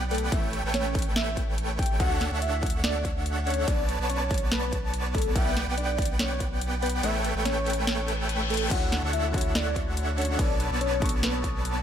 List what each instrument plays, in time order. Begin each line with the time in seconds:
Already playing: sub bass B1, supersaw synth B3 B4 D5 F#5 G5, digital synth lead G5
0.11 soft synth lead A4, closed hi-hat
0.15 closed hi-hat
0.18 closed hi-hat
0.32 sub bass A1, supersaw synth A3 A4 B4 C#5 G5, soft synth lead E5, digital synth lead G5, kick, closed hi-hat
0.53 closed hi-hat
0.64 sub bass A1, supersaw synth A3 A4 B4 C#5 G5, digital synth lead G5
0.74 soft synth lead C#5, snare, closed hi-hat
0.95 kick, closed hi-hat
0.99 closed hi-hat
1.02 closed hi-hat
1.16 soft synth lead E5, snare, closed hi-hat
1.37 kick, closed hi-hat
1.58 closed hi-hat
1.79 soft synth lead G5, kick, closed hi-hat
1.83 closed hi-hat
1.86 closed hi-hat
2.00 sub bass D2, supersaw synth D4 A4 C#5 E5 F#5, soft synth lead F#5, digital synth lead F#5, kick, closed hi-hat
2.21 snare, closed hi-hat
2.31 sub bass D2, supersaw synth D4 A4 C#5 E5 F#5, digital synth lead F#5
2.42 soft synth lead E5, closed hi-hat
2.63 kick, closed hi-hat
2.66 closed hi-hat
2.70 closed hi-hat
2.84 soft synth lead D5, snare, closed hi-hat
3.05 kick, closed hi-hat
3.26 closed hi-hat
3.47 soft synth lead C#5, closed hi-hat
3.50 closed hi-hat
3.54 closed hi-hat
3.68 sub bass B1, supersaw synth B3 B4 C#5 D5 A5, soft synth lead D5, digital synth lead A5, kick, closed hi-hat
3.89 closed hi-hat
3.99 sub bass B1, supersaw synth B3 B4 C#5 D5 A5, digital synth lead A5
4.10 soft synth lead C#5, closed hi-hat
4.31 kick, closed hi-hat
4.34 closed hi-hat
4.38 closed hi-hat
4.52 soft synth lead B4, snare, closed hi-hat
4.73 kick, closed hi-hat
4.94 closed hi-hat
5.14 soft synth lead A4, kick, closed hi-hat
5.18 closed hi-hat
5.22 closed hi-hat
5.36 sub bass B1, supersaw synth B3 B4 D5 F#5 G5, soft synth lead E5, digital synth lead G5, kick, closed hi-hat
5.57 snare, closed hi-hat
5.67 sub bass B1, supersaw synth B3 B4 D5 F#5 G5, digital synth lead G5
5.78 soft synth lead D5, closed hi-hat
5.98 kick, closed hi-hat
6.02 closed hi-hat
6.05 closed hi-hat
6.19 soft synth lead C#5, snare, closed hi-hat
6.40 kick, closed hi-hat
6.61 closed hi-hat
6.82 soft synth lead B4, closed hi-hat
6.86 closed hi-hat
6.89 closed hi-hat
7.03 sub bass A1, supersaw synth A3 A4 B4 C#5 G5, soft synth lead E5, digital synth lead G5, closed hi-hat
7.24 closed hi-hat
7.35 sub bass A1, supersaw synth A3 A4 B4 C#5 G5, digital synth lead G5
7.45 soft synth lead C#5, snare, closed hi-hat
7.66 closed hi-hat
7.70 closed hi-hat
7.73 closed hi-hat
7.87 soft synth lead C#5, snare, closed hi-hat, reverse cymbal
8.08 closed hi-hat
8.29 closed hi-hat
8.50 soft synth lead A4, closed hi-hat
8.54 closed hi-hat
8.57 closed hi-hat
8.69 sub bass D2, felt piano D3 D4 E4 F#4, supersaw synth D4 A4 C#5 E5 F#5, soft synth lead F#5, digital synth lead F#5, kick, closed hi-hat, crash
8.73 felt piano C#5
8.92 snare, closed hi-hat
9.03 sub bass D2, supersaw synth D4 A4 C#5 E5 F#5, digital synth lead F#5
9.13 soft synth lead E5, closed hi-hat
9.32 felt piano D3 D4 E4 F#4, kick, closed hi-hat
9.36 felt piano C#5, closed hi-hat
9.41 closed hi-hat
9.55 soft synth lead D5, snare, closed hi-hat
9.76 kick, closed hi-hat
9.97 closed hi-hat
10.18 soft synth lead C#5, closed hi-hat
10.22 closed hi-hat
10.25 closed hi-hat
10.37 sub bass B1, felt piano B2 B3 D4 A4, supersaw synth B3 B4 C#5 D5 A5, soft synth lead D5, digital synth lead A5, kick, closed hi-hat, crash
10.41 felt piano C#5
10.60 closed hi-hat
10.71 sub bass B1, supersaw synth B3 B4 C#5 D5 A5, digital synth lead A5
10.81 soft synth lead C#5, closed hi-hat
11.00 felt piano B2 B3 D4 A4, kick, closed hi-hat
11.04 felt piano C#6, closed hi-hat
11.09 closed hi-hat
11.23 soft synth lead B4, snare, closed hi-hat
11.44 kick, closed hi-hat
11.65 closed hi-hat